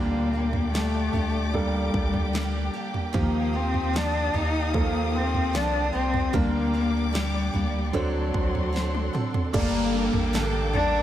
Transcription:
Already playing: D2 A#2 D3 G3 A#3 D4 G4 D5 G5 D6
0.33 A#3 D4 G4
0.53 floor tom
0.71 G3 A3 D4, snare
0.76 G4
1.13 D2 D4 G4, floor tom
1.53 G3 A#3 D4 A4, floor tom
1.93 D2, kick
2.14 floor tom
2.33 G3 A#3 D4 G4, snare
2.74 A#3 D4 G4
2.94 floor tom
3.13 D#2 D#3 F3 A#3 D#4 G4 F5 D#6, kick, floor tom
3.53 A#3 C4 D#4 G4
3.74 floor tom
3.93 F3 A#3 D4 G4, snare
4.34 D#2 A#3 D#4 G4, floor tom
4.74 D#3 F3 A#3 A4, kick, floor tom
5.16 C4
5.34 floor tom
5.53 C2 F3 A#3 D4 G4, snare
5.93 C2 A#3 C4 D#4 G4
6.14 floor tom
6.33 D2 D3 G3 A#3 D4 G4 A#4 D5 D6, kick, floor tom
6.73 A#3 D4 G4
7.13 G3 A#3 D4 G4, snare
7.53 D2 A#3 D4 G4, floor tom
7.93 D2 D3 F#3 C4 D4 A4 F#5 C6, floor tom
8.34 D2, kick
8.55 floor tom
8.73 F#3 C4 D4 A4, snare
8.95 high tom
9.13 C4 D4 A4, mid tom
9.34 floor tom
9.53 G1 G2 D3 G3 A3 A#3 D4 G4 A4 D5 G5 A5 D6, kick, floor tom, crash, downlifter
9.59 A#3
9.93 G3 A#3 D4 A4
10.13 A1, floor tom
10.33 G2 D3 G3 A#3 D4 A4, snare
10.73 G3 A#3 D4 A4, floor tom

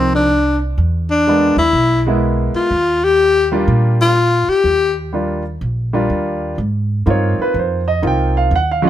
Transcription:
Already playing: C2 F3 A#3 C4 D#4
0.16 D4
0.78 E2
1.11 D4
1.27 G#3 A#3 B3 D4
1.57 D#2 E4
1.73 B1
2.06 G#3 A#3 B3 E4
2.54 F4, muted upright bass stroke
2.71 D#2
3.04 G4
3.52 G3 A#3 D4 F4
3.68 A#2
4.02 F4
4.48 G4, muted upright bass stroke
4.64 D#2
5.13 G3 A#3 D4 F4
5.61 A#1
5.93 G3 A#3 D4 F4
6.10 D#2
6.58 G#2
7.06 G2 A#3 C4 D#4 F4
7.10 C#5
7.38 B4, muted upright bass stroke
7.54 F2
7.59 C5
7.88 D#5
8.02 C2 A#3 C4 D#4 F4
8.07 G5
8.37 F5
8.51 D#2
8.56 F#5
8.71 F5
8.82 F#3 G#3 C#4 F4

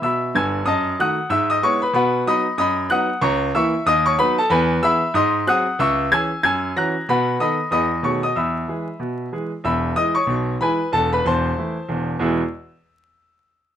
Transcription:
0.02 B2 E5 B5 E6
0.35 G1 G2 G#5 E6 G#6
0.65 F#2 D#5 A5 D#6
0.99 D#3 A3 F#4 F#5 D#6 F#6
1.30 G#2 E5 E6
1.50 D#5 D#6
1.62 G#3 B3 E4 C#5 C#6
1.82 B4 B5
1.93 B2 B4 F#5 B5
2.26 F#3 B3 D#4 D#5 B5 D#6
2.58 F#2 D#5 B5 D#6
2.89 F#3 B3 D#4 F#5 D#6 F#6
3.21 C#2 C#5 A#5 C#6
3.54 E3 A#3 E4 E5 C#6 E6
3.86 D#2 D#5 D#6
4.06 C#5 C#6
4.18 F#3 B3 D#4 B4 B5
4.38 A4 A5
4.50 E2 B4 G#5 B5
4.82 E3 B3 G#4 E5 B5 E6
5.14 G#2 D#5 C6 D#6
5.47 F#3 C4 G#4 F#5 D#6 F#6
5.79 C#2 E5 C#6 E6
6.11 E3 C#4 G#4 G#5 E6 G#6
6.43 F#2 G#5 E6 G#6
6.76 E3 C#4 F#4 A#5 F#6 A#6
7.09 B2 B4 F#5 B5
7.40 D#3 B3 A4 D#5 B5 D#6
7.71 E2 E3 B3 G#4 D#5 B5 D#6
8.03 B2 D#3 A3 G#4 C#5 C#6
8.23 D#5 D#6
8.35 E2 E5 B5 E6
8.68 E3 G#3 G#4
9.00 B2
9.32 E3 G#3 G#4
9.64 E1 E2 E5 B5 E6
9.95 E3 G#3 E4 D#5 D#6
10.15 C#5 C#6
10.27 B1 B2
10.60 E3 G#3 E4 B4 G#5 B5
10.92 E1 E2 A4 A5
11.13 B4 B5
11.25 E1 E2 C5 A5 C6
11.58 E3 A3 E4
11.89 E1 E2
12.19 E2 B2 G#3 B3 E4 G#4 E6

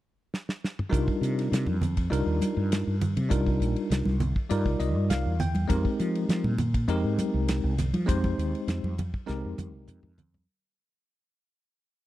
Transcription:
0.34 snare
0.49 snare
0.64 snare
0.79 mid tom
0.89 C2 G3 D4 D#4 F4 A#4, kick
0.94 hi-hat pedal, ride
1.08 kick
1.21 C3, hi-hat pedal, ride
1.39 snare, ride
1.52 C3, snare, hi-hat pedal, ride
1.66 F2, high conga
1.82 hi-hat pedal, ride, low conga
1.97 kick, ride
2.10 C2 G3 D4 D#4 F4 A#4, hi-hat pedal, ride
2.26 D#2
2.42 hi-hat pedal, ride, high conga
2.57 G2
2.72 snare, hi-hat pedal, ride
2.87 G2
3.01 hi-hat pedal, ride, low conga
3.16 C3, ride, high conga
3.29 C2 G3 D4 D#4 F4 A#4, kick, hi-hat pedal, ride
3.46 kick
3.60 A#1, hi-hat pedal, ride
3.76 ride
3.90 C2, snare, hi-hat pedal, ride
4.05 C2, snare, high conga
4.20 hi-hat pedal, ride, low conga
4.36 kick
4.49 G2 G3 D#4 F4 A#4 D5, hi-hat pedal, ride
4.66 C2, kick
4.79 C2 D#5, hi-hat pedal, ride
4.96 G2
5.10 C2 F5, snare, hi-hat pedal, ride
5.25 E2
5.40 G5, hi-hat pedal, ride, low conga
5.55 ride, high conga
5.68 F2 G#3 C4 D#4 G4 A#4, kick, hi-hat pedal, ride
5.85 kick
5.99 F3, hi-hat pedal, ride
6.15 ride
6.29 F3, snare, hi-hat pedal, ride
6.44 A#2, high conga
6.58 hi-hat pedal, ride, low conga
6.74 kick, ride
6.88 F2 G#3 C4 D#4 G4 A#4, hi-hat pedal, ride
7.04 G#2
7.18 hi-hat pedal, ride, high conga
7.34 C2
7.48 snare, hi-hat pedal, ride
7.64 C2
7.78 snare, hi-hat pedal, ride, low conga
7.94 F3, ride, high conga
8.06 F2 G#3 C4 D#4 G4 C5, kick, hi-hat pedal, ride
8.24 kick, high conga
8.38 D#2, hi-hat pedal, ride
8.55 ride
8.67 F2, snare, hi-hat pedal, ride
8.83 F2, high conga
8.98 hi-hat pedal, ride, high conga, low conga
9.14 kick
9.26 C2 G#3 C4 D#4 G4 A#4, snare, hi-hat pedal
9.45 F2
9.58 F2, hi-hat pedal, high tom, high conga, low conga
9.74 C2
9.88 F2, hi-hat pedal, mid tom
10.03 F2, mid tom
10.18 floor tom, hi-hat pedal, low conga
10.34 floor tom, high conga

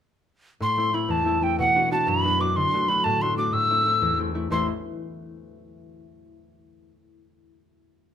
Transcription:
0.60 A2 C6
0.77 A3 C4 E4
0.93 A3 C4 E4 B5
1.08 E2 A5
1.25 A3 C4 E4
1.41 A3 C4 E4 G5
1.59 B2 F#5
1.75 B3 D4 F#4
1.91 B3 D4 F#4 A5
2.07 F#2 B5
2.24 B3 D4 F#4
2.39 B3 D4 F#4 D6
2.56 D3 C6
2.74 A3 D4 F#4
2.89 A3 D4 F#4 B5
3.04 A2 A5
3.22 A3 D4 F#4 C6
3.38 A3 D4 F#4 D6
3.53 A2 E6
3.70 A3 C4 E4
3.86 A3 C4 E4
4.01 E2
4.19 A3 C4 E4
4.34 A3 C4 E4
4.50 A1 E2 A3 E4 C5 E5 C6

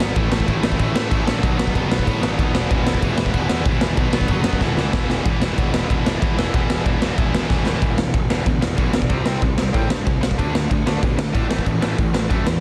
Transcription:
Already playing: D#4
0.00 G#1 B2 D#3 F#3 B3, snare
0.15 A1 A2 E3 A3 C#4 E4, kick, crash
0.30 A1 A2 E3 A3 C#4 E4, snare
0.40 kick
0.46 A1 A2 E3 A3 C#4 E4, kick, crash
0.61 A1 A2 E3 A3 C#4 E4, snare
0.72 kick
0.78 A1 A2 E3 A3 C#4 E4, kick, crash
0.94 A2 E3 A3 C#4 E4, snare
1.10 A1 A2 E3 A3 C#4 E4, kick, crash
1.26 A#1 A2 E3 A3 C#4 E4, snare
1.41 B1 B2 D#3 F#3 B3 D#4, kick, crash
1.57 B1 B2 D#3 F#3 B3 D#4, snare
1.67 kick
1.74 F#1 B2 D#3 F#3 B3 D#4, kick, crash
1.88 B1 B2 F#3 B3 D#4, snare
1.92 B2 D#3
1.99 kick
2.06 A2 B2 D#3 F#3 B3 D#4, kick, crash
2.22 A1 B2 D#3 F#3 B3 D#4, snare
2.39 D#2 B2 D#3 F#3 B3 D#4, kick, crash
2.53 E1 E2 B2 E3 G#3 B3 E4, snare
2.70 E1 E2 B2 E3 G#3 B3 E4, kick, crash
2.86 E1 E2 B2 E3 G#3 B3 E4, snare
2.94 kick
3.01 E1 E2 B2 E3 G#3 B3 E4, kick, crash
3.18 E1 E2 B2 E3 G#3 B3 E4, snare
3.26 kick
3.34 E1 E2 B2 E3 G#3 B3 E4, kick, crash
3.49 E2 B2 E3 G#3 B3 E4, snare
3.65 E1 E2 B2 E3 G#3 B3 E4, kick, crash
3.80 E1 E2 B2 E3 G#3 B3 E4, snare
3.95 B1 B2 D#3 F#3 B3 D#4, kick, crash
4.11 B1 B2 D#3 F#3 B3 D#4, snare
4.15 B2
4.21 kick
4.27 F#1 B2 D#3 F#3 B3 D#4, kick, crash
4.31 B3
4.43 F#2 B2 D#3 F#3 B3 D#4, snare
4.53 kick
4.59 E1 E2 B2 E3 G#3 B3 E4, kick, snare
4.76 C#2 E2 B2 E3 G#3 B3 E4, snare
4.91 E1 E2 B2 E3 G#3 B3 E4, kick, snare
5.08 E1 E2 B2 E3 G#3 B3 E4, snare
5.23 E1 E2 B2 E3 G#3 B3, kick, ride
5.27 E4
5.41 E1, snare
5.57 E1 E2 B2 E3, kick, ride
5.73 E1 E2 B2 E3, snare
5.88 E1 E2 B2 E3 G#3 B3 E4, kick, ride
6.05 E1, snare
6.21 E2 B2 E3, kick, ride
6.37 E1 E2 B2 E3, snare
6.53 E1 E2 B2 E3 G#3 B3 E4, kick, ride
6.70 E1, snare
6.85 E1 E2 B2 E3, kick, ride
7.01 E1 E2 B2 E3, snare
7.16 E1 E2 B2 E3 G#3 B3 E4, kick, ride
7.35 snare
7.48 E1 E2 B2 E3, kick, snare
7.65 E1 E2 B2 E3, snare
7.81 E1 E2 B2 E3, kick, crash
7.97 E1 E2 B2, snare
8.14 E1 E2 B2, kick, crash
8.29 E1 E2 B2 E3, snare
8.46 D2 E2 B2, kick, crash
8.61 E2 B2, snare
8.77 B1 E2 B2 E3, kick, crash
8.93 D2 E2 B2, snare
9.02 kick
9.09 C2 C3 G3 C4, kick, crash
9.26 C2 C3 G3 C4, snare
9.42 C2 C3 G3, kick, crash
9.57 C2 C3 G3, snare
9.73 A2 C3 G3 C4, kick, crash
9.89 G2 C3 G3, snare
10.05 C2 C3 G3, kick, crash
10.21 C2 C3 G3, snare
10.31 kick
10.38 D2 D3 A3 D4, kick, crash
10.54 D2 D3 A3, snare
10.69 D2 D3 A3, kick, crash
10.86 D2 D3 A3 D4, snare
11.02 B2 D3 A3, kick, crash
11.17 D3 A3, snare
11.33 A2 D3 A3 D4, kick, crash
11.48 A1 A2 E3 A3, snare
11.59 kick
11.65 A1 A2 E3, kick, crash
11.81 A1 A2 E3 A3, snare
11.97 A1 A2 E3, kick, crash
12.13 A1 A2 E3, snare
12.29 F#2 A2 E3 A3, kick, crash
12.45 E2 A2 E3, snare

